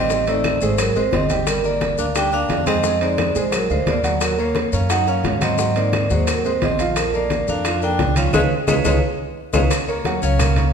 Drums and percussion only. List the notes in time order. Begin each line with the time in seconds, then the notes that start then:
0.10 high bongo, high conga, maracas
0.27 high conga, high timbale, maracas
0.44 high bongo, high conga, high timbale, low timbale, claves, maracas
0.61 high bongo, high conga, maracas
0.78 high bongo, high conga, high timbale, claves, maracas
0.95 high bongo, high conga, maracas
1.13 high bongo, low bongo, high conga, high timbale, low timbale, maracas
1.30 high bongo, high conga, high timbale, maracas
1.47 high bongo, high conga, high timbale, claves, maracas
1.64 high conga, maracas
1.81 high bongo, high conga, high timbale, low timbale, maracas
1.98 high bongo, maracas
2.15 high bongo, high conga, high timbale, claves, maracas
2.32 high bongo, high conga, maracas
2.49 high bongo, low bongo, high conga, high timbale, low timbale, maracas
2.66 high bongo, high conga, high timbale, claves, maracas
2.84 high bongo, high conga, maracas
3.01 high conga, high timbale, maracas
3.18 high bongo, high conga, high timbale, low timbale, claves, maracas
3.35 high bongo, high conga, maracas
3.52 high bongo, high conga, high timbale, claves, maracas
3.70 high bongo, high conga, maracas
3.86 high bongo, low bongo, high conga, high timbale, low timbale, maracas
4.03 high bongo, high conga, high timbale, maracas
4.21 high bongo, high conga, high timbale, claves, maracas
4.38 high conga, maracas
4.55 high bongo, high conga, high timbale, low timbale, maracas
4.73 high bongo, maracas
4.89 high bongo, high conga, high timbale, claves, maracas
5.07 high bongo, high conga, maracas
5.24 high bongo, low bongo, high conga, high timbale, low timbale, maracas
5.41 high bongo, high conga, high timbale, claves, maracas
5.58 high bongo, high conga, maracas
5.76 high conga, high timbale, maracas
5.93 high bongo, high conga, high timbale, low timbale, claves, maracas
6.10 high bongo, high conga, maracas
6.27 high bongo, high conga, high timbale, claves, maracas
6.45 high bongo, high conga, maracas
6.62 high bongo, low bongo, high conga, high timbale, low timbale, maracas
6.79 high bongo, high conga, high timbale, maracas
6.96 high bongo, high conga, high timbale, claves, maracas
7.13 high conga, maracas
7.30 high bongo, high conga, high timbale, low timbale, maracas
7.48 high bongo, maracas
7.65 high bongo, high conga, high timbale, claves, maracas
7.82 high bongo, high conga, maracas
7.99 high bongo, low bongo, high conga, high timbale, low timbale, maracas
8.16 high bongo, high conga, high timbale, claves, maracas
8.33 high bongo, high conga, high timbale, claves, maracas
8.68 high bongo, high conga, high timbale, claves, maracas
8.85 high bongo, high conga, high timbale, claves, maracas
9.53 high bongo, high conga, high timbale, claves, maracas
9.71 high bongo, high conga, high timbale, claves, maracas
9.88 high conga, maracas
10.05 high bongo, high conga, high timbale, maracas
10.22 high bongo, maracas
10.39 high bongo, high conga, low conga, high timbale, claves, maracas
10.56 high bongo, high conga, low conga, high timbale, maracas